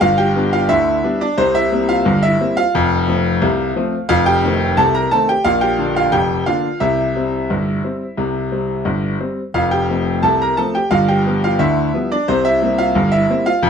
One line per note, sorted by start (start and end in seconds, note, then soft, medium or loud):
0.01 0.30 G1 medium
0.01 0.30 G2 loud
0.01 0.18 F4 medium
0.01 0.18 F5 loud
0.18 0.51 G4 medium
0.18 0.52 G5 loud
0.35 0.54 G3 medium
0.35 0.55 B3 medium
0.35 0.55 D4 medium
0.53 0.69 F4 medium
0.53 0.70 F5 medium
0.69 0.98 D2 medium
0.69 0.98 D3 medium
0.69 1.17 E4 medium
0.69 1.20 E5 loud
1.03 1.22 G3 medium
1.03 1.23 B3 medium
1.03 1.21 D4 medium
1.21 1.37 D4 medium
1.21 1.38 D5 medium
1.38 1.67 C2 medium
1.38 1.67 C3 medium
1.38 1.54 C4 medium
1.38 1.55 C5 loud
1.55 1.87 E4 medium
1.55 1.89 E5 loud
1.72 1.90 G3 medium
1.72 1.91 A#3 medium
1.72 1.91 C4 medium
1.89 2.21 F4 medium
1.89 2.23 F5 loud
2.05 2.34 G1 medium
2.05 2.35 G2 medium
2.23 2.55 E4 medium
2.23 2.57 E5 loud
2.40 2.59 G3 medium
2.40 2.59 A#3 medium
2.40 2.59 C4 medium
2.57 4.06 F4 medium
2.57 4.07 F5 loud
2.75 3.03 F1 medium
2.75 3.03 F2 loud
3.08 3.27 F3 medium
3.08 3.27 A3 medium
3.08 3.27 C4 medium
3.42 3.70 C2 medium
3.42 3.70 C3 loud
3.76 3.94 F3 medium
3.76 3.95 A3 medium
3.76 3.95 C4 medium
4.09 4.38 F1 medium
4.09 4.38 F2 loud
4.09 4.25 F4 medium
4.09 4.26 F5 loud
4.26 4.74 G4 medium
4.26 4.77 G5 loud
4.44 4.62 D#3 medium
4.44 4.63 A3 medium
4.44 4.63 C4 medium
4.77 5.06 C2 medium
4.77 5.06 C3 medium
4.77 4.93 A4 loud
4.77 4.94 A5 loud
4.95 5.11 A#4 medium
4.95 5.11 A#5 loud
5.11 5.30 D#3 medium
5.11 5.30 A3 medium
5.11 5.31 C4 medium
5.11 5.28 A4 medium
5.11 5.28 A5 loud
5.29 5.45 G4 medium
5.29 5.45 G5 loud
5.44 5.74 A#1 medium
5.44 5.74 A#2 medium
5.44 5.61 F4 medium
5.44 5.62 F5 loud
5.61 5.94 G4 medium
5.61 5.96 G5 loud
5.78 5.97 D3 medium
5.78 5.98 A#3 medium
5.78 5.98 D4 medium
5.96 6.13 F4 medium
5.96 6.13 F5 loud
6.12 6.41 F1 medium
6.12 6.41 F2 medium
6.12 6.45 G4 medium
6.12 6.47 G5 loud
6.46 6.65 D3 medium
6.46 6.66 A#3 soft
6.46 6.66 D4 medium
6.46 6.79 F4 medium
6.46 6.81 F5 loud
6.80 7.10 C2 medium
6.80 7.10 C3 medium
6.80 9.16 E4 medium
6.80 9.20 E5 medium
7.16 7.34 G3 medium
7.16 7.35 C4 medium
7.50 7.79 G1 medium
7.50 7.79 G2 medium
7.84 8.03 G3 soft
7.84 8.03 C4 medium
8.17 8.47 C2 medium
8.17 8.47 C3 medium
8.52 8.71 G3 soft
8.52 8.71 C4 medium
8.85 9.15 G1 medium
8.85 9.15 G2 medium
9.20 9.39 G3 medium
9.20 9.39 C4 medium
9.54 9.83 F1 medium
9.54 9.84 F2 medium
9.54 9.71 F4 medium
9.54 9.71 F5 medium
9.71 10.20 G4 medium
9.71 10.23 G5 medium
9.90 10.08 F3 medium
9.90 10.08 A3 medium
9.90 10.09 C4 medium
10.23 10.52 C2 medium
10.23 10.52 C3 medium
10.23 10.39 A4 medium
10.23 10.40 A5 loud
10.42 10.57 A#4 medium
10.42 10.58 A#5 loud
10.57 10.76 F3 medium
10.57 10.76 A3 soft
10.57 10.77 C4 medium
10.57 10.74 A4 medium
10.57 10.74 A5 loud
10.75 10.91 G4 medium
10.75 10.91 G5 medium
10.91 11.20 G1 medium
10.91 11.20 G2 medium
10.91 11.07 F4 medium
10.91 11.08 F5 loud
11.08 11.40 G4 medium
11.08 11.42 G5 medium
11.26 11.44 F3 soft
11.26 11.45 G3 soft
11.26 11.45 B3 medium
11.44 11.60 F4 medium
11.44 11.60 F5 medium
11.59 11.88 D2 medium
11.59 11.88 D3 medium
11.59 12.07 E4 medium
11.59 12.10 E5 medium
11.94 12.12 F3 soft
11.94 12.13 G3 medium
11.94 12.13 B3 medium
12.12 12.27 D4 medium
12.12 12.28 D5 medium
12.28 12.57 C2 medium
12.28 12.57 C3 medium
12.28 12.44 C4 medium
12.28 12.45 C5 loud
12.45 12.77 E4 medium
12.45 12.78 E5 loud
12.62 12.81 G3 medium
12.62 12.81 A#3 medium
12.62 12.81 C4 medium
12.78 13.10 F4 medium
12.78 13.12 F5 loud
12.95 13.24 G1 medium
12.95 13.24 G2 medium
13.12 13.44 E4 medium
13.12 13.46 E5 loud
13.30 13.48 G3 medium
13.30 13.48 A#3 medium
13.30 13.49 C4 medium
13.46 13.70 F4 medium
13.46 13.70 F5 loud
13.63 13.70 F1 medium
13.63 13.70 F2 loud